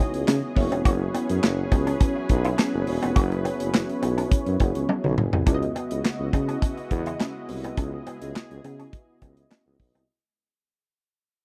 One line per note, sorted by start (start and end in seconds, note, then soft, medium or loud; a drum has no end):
0.00 0.52 C#3 medium
0.00 5.43 E3 medium
0.00 0.52 G#3 medium
0.00 0.10 B3 medium
0.00 0.52 B3 medium
0.00 0.52 D#4 medium
0.00 0.52 E4 medium
0.00 0.53 F#4 medium
0.00 5.43 G#4 medium
0.00 0.53 C#5 medium
0.00 0.52 D#5 medium
0.14 0.24 C#2 medium
0.14 closed hi-hat medium
0.27 0.39 C#3 loud
0.27 0.39 C#4 medium
0.27 snare loud
0.27 clap loud
0.27 closed hi-hat loud
0.56 0.68 F#1 loud
0.56 5.43 F#3 medium
0.56 5.14 B3 medium
0.56 5.14 C#4 medium
0.56 5.43 C#4 medium
0.56 5.14 E4 medium
0.56 5.14 F#4 medium
0.56 5.43 B4 medium
0.56 5.14 C#5 medium
0.56 muted clean electric guitar stroke medium
0.56 kick loud
0.56 open hi-hat medium
0.72 0.82 F1 medium
0.72 0.82 B3 medium
0.72 closed hi-hat medium
0.85 1.07 F#1 loud
0.85 0.97 F#4 medium
0.85 kick loud
0.85 closed hi-hat loud
1.01 muted clean electric guitar stroke soft
1.14 1.26 B3 medium
1.14 closed hi-hat medium
1.29 1.40 F#2 loud
1.29 closed hi-hat medium
1.43 1.65 F#1 loud
1.43 muted clean electric guitar stroke soft
1.43 snare loud
1.43 clap medium
1.43 closed hi-hat medium
1.72 1.93 C#2 medium
1.72 1.83 B3 medium
1.72 kick loud
1.72 closed hi-hat medium
1.87 1.97 C#4 loud
1.87 closed hi-hat medium
2.00 2.12 C#4 medium
2.00 kick loud
2.00 closed hi-hat loud
2.16 muted clean electric guitar stroke medium
2.29 2.51 B1 loud
2.29 kick loud
2.29 closed hi-hat medium
2.44 2.55 E4 medium
2.44 closed hi-hat medium
2.58 2.70 C#4 medium
2.58 snare loud
2.58 clap loud
2.58 closed hi-hat loud
2.74 2.84 F#1 loud
2.87 2.99 E1 loud
2.87 muted clean electric guitar stroke soft
2.87 open hi-hat medium
3.02 3.13 F1 medium
3.02 3.13 B3 medium
3.02 closed hi-hat medium
3.16 3.49 F#1 loud
3.16 3.28 F#4 loud
3.16 kick loud
3.16 closed hi-hat medium
3.31 muted clean electric guitar stroke soft
3.31 closed hi-hat soft
3.45 3.56 B3 medium
3.45 closed hi-hat medium
3.60 3.82 F#1 medium
3.60 closed hi-hat medium
3.74 muted clean electric guitar stroke soft
3.74 snare loud
3.74 clap medium
3.74 closed hi-hat medium
3.89 closed hi-hat soft
4.02 4.24 B1 medium
4.02 4.14 B3 medium
4.02 closed hi-hat medium
4.18 4.28 C#4 medium
4.18 closed hi-hat medium
4.32 kick loud
4.32 closed hi-hat loud
4.46 4.57 F#2 loud
4.46 closed hi-hat soft
4.60 4.72 F#1 loud
4.60 4.72 B3 medium
4.60 kick medium
4.60 closed hi-hat medium
4.75 4.85 C#2 medium
4.75 closed hi-hat medium
4.89 5.01 C#4 medium
4.89 high tom medium
5.04 5.14 B1 loud
5.04 mid tom medium
5.18 5.29 F#1 medium
5.18 muted clean electric guitar stroke medium
5.18 mid tom medium
5.33 5.43 C2 medium
5.33 5.44 B3 medium
5.33 floor tom loud
5.46 5.68 C#2 loud
5.46 10.04 C#3 medium
5.46 10.04 G#3 medium
5.46 10.04 B3 medium
5.46 5.58 C#4 loud
5.46 10.04 E4 medium
5.46 7.75 F#4 medium
5.46 10.04 F#4 medium
5.46 5.54 D5 medium
5.46 10.04 D#5 medium
5.46 kick loud
5.46 closed hi-hat medium
5.54 10.08 D#5 medium
5.62 muted clean electric guitar stroke soft
5.62 closed hi-hat soft
5.75 5.87 B3 medium
5.75 closed hi-hat medium
5.91 6.01 C#2 medium
5.91 closed hi-hat medium
6.04 muted clean electric guitar stroke soft
6.04 snare loud
6.04 clap medium
6.04 closed hi-hat medium
6.20 6.30 C#2 medium
6.33 6.55 C#3 medium
6.33 6.45 B3 medium
6.33 kick loud
6.33 closed hi-hat medium
6.49 6.59 C#4 medium
6.49 closed hi-hat medium
6.62 6.74 C#4 medium
6.62 kick loud
6.62 closed hi-hat medium
6.77 muted clean electric guitar stroke soft
6.77 closed hi-hat soft
6.91 7.13 E2 loud
6.91 kick medium
6.91 closed hi-hat medium
7.06 7.17 E4 medium
7.06 closed hi-hat soft
7.20 7.32 C#4 medium
7.20 snare loud
7.20 clap medium
7.20 closed hi-hat medium
7.49 7.70 C2 medium
7.49 muted clean electric guitar stroke medium
7.49 open hi-hat medium
7.64 7.75 B3 medium
7.64 closed hi-hat medium
7.77 7.99 C#2 loud
7.77 7.89 C#4 medium
7.77 10.06 G#4 medium
7.77 kick loud
7.77 closed hi-hat loud
7.93 muted clean electric guitar stroke soft
8.07 8.18 B3 medium
8.07 closed hi-hat medium
8.22 8.32 C#2 medium
8.22 closed hi-hat medium
8.35 muted clean electric guitar stroke soft
8.35 snare loud
8.35 clap medium
8.35 closed hi-hat medium
8.51 8.61 C#2 loud
8.51 closed hi-hat soft
8.64 8.86 C#3 loud
8.64 8.76 B3 medium
8.64 closed hi-hat medium
8.79 8.90 C#4 medium
8.79 closed hi-hat soft
8.93 kick loud
8.93 closed hi-hat loud
9.22 9.43 C#2 loud
9.22 9.34 B3 medium
9.22 kick medium
9.22 closed hi-hat medium
9.37 closed hi-hat soft
9.51 9.62 C#4 medium
9.51 snare loud
9.51 clap medium
9.51 closed hi-hat loud
9.66 9.76 C#2 loud
9.80 9.91 B1 medium
9.80 muted clean electric guitar stroke soft
9.80 kick medium
9.80 open hi-hat medium
9.95 10.05 C2 medium
9.95 10.05 B3 medium
9.95 closed hi-hat medium